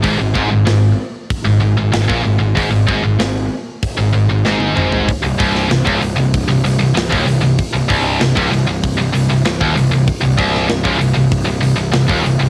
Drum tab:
HH |o---o---o---o---|o---o---o-------|o-o-o-o-o-o-o-o-|o-o-o-o-o-o-o-o-|
SD |----o-------o---|----o-------o---|---oo-------o---|----o-------o---|
T1 |----------------|-------------o--|----------------|----------------|
T2 |----------------|--------------o-|----------------|----------------|
FT |----------------|---------------o|----------------|----------------|
BD |o-o-----o----o--|o-o-----o-------|o-o--o--o----o--|o-o--o--o----o--|

HH |o-o-o-o-o-o-o-o-|
SD |---oo-------o---|
T1 |----------------|
T2 |----------------|
FT |----------------|
BD |o-o--o--o----o--|